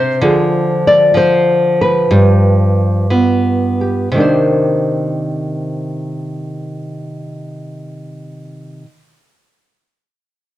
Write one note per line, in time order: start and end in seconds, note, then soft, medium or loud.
0.00 0.21 C3 medium
0.00 0.22 D4 soft
0.00 0.18 F4 soft
0.00 0.85 C5 loud
0.21 2.07 D3 medium
0.21 1.13 F3 soft
0.21 2.08 F4 soft
0.21 2.08 G#4 soft
0.87 1.16 D5 medium
1.14 3.09 F3 medium
1.14 1.81 C5 medium
1.81 4.13 B4 medium
2.11 4.11 G2 medium
2.11 3.79 G4 soft
3.10 4.08 B3 medium
3.10 4.08 F4 soft
3.81 4.09 G4 soft
4.12 8.83 C3 medium
4.12 8.85 D#3 medium
4.16 8.87 A#3 medium
4.16 8.89 D4 medium
4.20 8.88 C5 medium